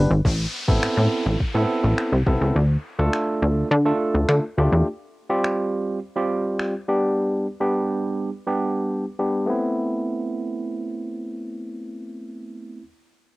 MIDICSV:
0, 0, Header, 1, 5, 480
1, 0, Start_track
1, 0, Key_signature, 0, "minor"
1, 0, Tempo, 576923
1, 207, Time_signature, 4, 2, 24, 8
1, 11121, End_track
2, 0, Start_track
2, 0, Title_t, "Tine electric piano"
2, 0, Program_c, 0, 4
2, 0, Note_on_c, 0, 62, 90
2, 0, Note_on_c, 0, 67, 85
2, 0, Note_on_c, 0, 71, 107
2, 84, Note_off_c, 0, 62, 0
2, 84, Note_off_c, 0, 67, 0
2, 85, Note_off_c, 0, 71, 0
2, 564, Note_on_c, 0, 59, 91
2, 566, Note_on_c, 0, 60, 87
2, 567, Note_on_c, 0, 64, 87
2, 568, Note_on_c, 0, 69, 100
2, 1137, Note_off_c, 0, 59, 0
2, 1138, Note_off_c, 0, 60, 0
2, 1139, Note_off_c, 0, 64, 0
2, 1139, Note_off_c, 0, 69, 0
2, 1285, Note_on_c, 0, 59, 93
2, 1287, Note_on_c, 0, 60, 84
2, 1288, Note_on_c, 0, 64, 86
2, 1289, Note_on_c, 0, 69, 104
2, 1763, Note_off_c, 0, 59, 0
2, 1763, Note_off_c, 0, 60, 0
2, 1764, Note_off_c, 0, 64, 0
2, 1765, Note_off_c, 0, 69, 0
2, 1886, Note_on_c, 0, 59, 88
2, 1888, Note_on_c, 0, 60, 82
2, 1889, Note_on_c, 0, 64, 77
2, 1890, Note_on_c, 0, 69, 97
2, 2127, Note_off_c, 0, 59, 0
2, 2127, Note_off_c, 0, 60, 0
2, 2128, Note_off_c, 0, 64, 0
2, 2129, Note_off_c, 0, 69, 0
2, 2486, Note_on_c, 0, 57, 92
2, 2488, Note_on_c, 0, 62, 85
2, 2489, Note_on_c, 0, 65, 81
2, 2490, Note_on_c, 0, 69, 102
2, 3058, Note_off_c, 0, 57, 0
2, 3059, Note_off_c, 0, 62, 0
2, 3060, Note_off_c, 0, 65, 0
2, 3060, Note_off_c, 0, 69, 0
2, 3206, Note_on_c, 0, 57, 95
2, 3207, Note_on_c, 0, 62, 82
2, 3209, Note_on_c, 0, 65, 81
2, 3210, Note_on_c, 0, 69, 96
2, 3683, Note_off_c, 0, 57, 0
2, 3684, Note_off_c, 0, 62, 0
2, 3684, Note_off_c, 0, 65, 0
2, 3685, Note_off_c, 0, 69, 0
2, 3806, Note_on_c, 0, 57, 85
2, 3807, Note_on_c, 0, 62, 76
2, 3808, Note_on_c, 0, 65, 77
2, 3810, Note_on_c, 0, 67, 93
2, 4047, Note_off_c, 0, 57, 0
2, 4047, Note_off_c, 0, 62, 0
2, 4048, Note_off_c, 0, 65, 0
2, 4048, Note_off_c, 0, 67, 0
2, 4405, Note_on_c, 0, 55, 92
2, 4406, Note_on_c, 0, 60, 86
2, 4407, Note_on_c, 0, 65, 85
2, 4409, Note_on_c, 0, 67, 100
2, 4978, Note_off_c, 0, 55, 0
2, 4978, Note_off_c, 0, 60, 0
2, 4979, Note_off_c, 0, 65, 0
2, 4980, Note_off_c, 0, 67, 0
2, 5126, Note_on_c, 0, 55, 91
2, 5127, Note_on_c, 0, 60, 81
2, 5128, Note_on_c, 0, 65, 85
2, 5130, Note_on_c, 0, 67, 95
2, 5603, Note_off_c, 0, 55, 0
2, 5603, Note_off_c, 0, 60, 0
2, 5604, Note_off_c, 0, 65, 0
2, 5605, Note_off_c, 0, 67, 0
2, 5725, Note_on_c, 0, 55, 86
2, 5726, Note_on_c, 0, 59, 77
2, 5727, Note_on_c, 0, 62, 80
2, 5729, Note_on_c, 0, 67, 90
2, 6206, Note_off_c, 0, 55, 0
2, 6207, Note_off_c, 0, 59, 0
2, 6207, Note_off_c, 0, 62, 0
2, 6208, Note_off_c, 0, 67, 0
2, 6325, Note_on_c, 0, 55, 88
2, 6326, Note_on_c, 0, 59, 82
2, 6328, Note_on_c, 0, 62, 81
2, 6329, Note_on_c, 0, 67, 97
2, 6898, Note_off_c, 0, 55, 0
2, 6898, Note_off_c, 0, 59, 0
2, 6899, Note_off_c, 0, 62, 0
2, 6900, Note_off_c, 0, 67, 0
2, 7045, Note_on_c, 0, 55, 84
2, 7047, Note_on_c, 0, 59, 82
2, 7048, Note_on_c, 0, 62, 85
2, 7049, Note_on_c, 0, 67, 101
2, 7522, Note_off_c, 0, 55, 0
2, 7523, Note_off_c, 0, 59, 0
2, 7524, Note_off_c, 0, 62, 0
2, 7524, Note_off_c, 0, 67, 0
2, 7644, Note_on_c, 0, 55, 81
2, 7645, Note_on_c, 0, 59, 75
2, 7646, Note_on_c, 0, 62, 76
2, 7648, Note_on_c, 0, 67, 86
2, 7870, Note_on_c, 0, 57, 78
2, 7871, Note_off_c, 0, 59, 0
2, 7881, Note_on_c, 0, 59, 67
2, 7886, Note_off_c, 0, 55, 0
2, 7887, Note_off_c, 0, 62, 0
2, 7888, Note_off_c, 0, 67, 0
2, 7892, Note_on_c, 0, 60, 70
2, 7903, Note_on_c, 0, 64, 87
2, 10640, Note_off_c, 0, 57, 0
2, 10650, Note_off_c, 0, 59, 0
2, 10662, Note_off_c, 0, 60, 0
2, 10673, Note_off_c, 0, 64, 0
2, 11121, End_track
3, 0, Start_track
3, 0, Title_t, "Analog synth bass"
3, 0, Program_c, 1, 38
3, 88, Note_on_c, 1, 32, 98
3, 177, Note_off_c, 1, 32, 0
3, 207, Note_on_c, 1, 33, 113
3, 387, Note_off_c, 1, 33, 0
3, 567, Note_on_c, 1, 33, 92
3, 657, Note_off_c, 1, 33, 0
3, 687, Note_on_c, 1, 45, 49
3, 735, Note_off_c, 1, 45, 0
3, 807, Note_on_c, 1, 45, 95
3, 897, Note_off_c, 1, 45, 0
3, 1047, Note_on_c, 1, 33, 90
3, 1137, Note_off_c, 1, 33, 0
3, 1167, Note_on_c, 1, 45, 49
3, 1215, Note_off_c, 1, 45, 0
3, 1286, Note_on_c, 1, 45, 94
3, 1377, Note_off_c, 1, 45, 0
3, 1526, Note_on_c, 1, 33, 93
3, 1617, Note_off_c, 1, 33, 0
3, 1767, Note_on_c, 1, 36, 84
3, 1857, Note_off_c, 1, 36, 0
3, 1886, Note_on_c, 1, 36, 92
3, 1977, Note_off_c, 1, 36, 0
3, 2007, Note_on_c, 1, 37, 92
3, 2097, Note_off_c, 1, 37, 0
3, 2127, Note_on_c, 1, 38, 101
3, 2307, Note_off_c, 1, 38, 0
3, 2488, Note_on_c, 1, 38, 94
3, 2577, Note_off_c, 1, 38, 0
3, 2848, Note_on_c, 1, 38, 91
3, 3028, Note_off_c, 1, 38, 0
3, 3088, Note_on_c, 1, 50, 107
3, 3268, Note_off_c, 1, 50, 0
3, 3448, Note_on_c, 1, 38, 90
3, 3538, Note_off_c, 1, 38, 0
3, 3567, Note_on_c, 1, 50, 102
3, 3657, Note_off_c, 1, 50, 0
3, 3808, Note_on_c, 1, 38, 90
3, 3898, Note_off_c, 1, 38, 0
3, 3927, Note_on_c, 1, 40, 92
3, 4017, Note_off_c, 1, 40, 0
3, 11121, End_track
4, 0, Start_track
4, 0, Title_t, "Downlifter"
4, 0, Program_c, 2, 103
4, 208, Note_on_c, 2, 60, 84
4, 4047, Note_off_c, 2, 60, 0
4, 11121, End_track
5, 0, Start_track
5, 0, Title_t, "Drums"
5, 207, Note_on_c, 9, 36, 106
5, 291, Note_off_c, 9, 36, 0
5, 567, Note_on_c, 9, 36, 94
5, 650, Note_off_c, 9, 36, 0
5, 689, Note_on_c, 9, 26, 115
5, 772, Note_off_c, 9, 26, 0
5, 1167, Note_on_c, 9, 36, 96
5, 1250, Note_off_c, 9, 36, 0
5, 1647, Note_on_c, 9, 26, 109
5, 1730, Note_off_c, 9, 26, 0
5, 1886, Note_on_c, 9, 36, 87
5, 1969, Note_off_c, 9, 36, 0
5, 2608, Note_on_c, 9, 26, 106
5, 2692, Note_off_c, 9, 26, 0
5, 3566, Note_on_c, 9, 26, 105
5, 3649, Note_off_c, 9, 26, 0
5, 4528, Note_on_c, 9, 26, 106
5, 4612, Note_off_c, 9, 26, 0
5, 5487, Note_on_c, 9, 26, 106
5, 5570, Note_off_c, 9, 26, 0
5, 11121, End_track
0, 0, End_of_file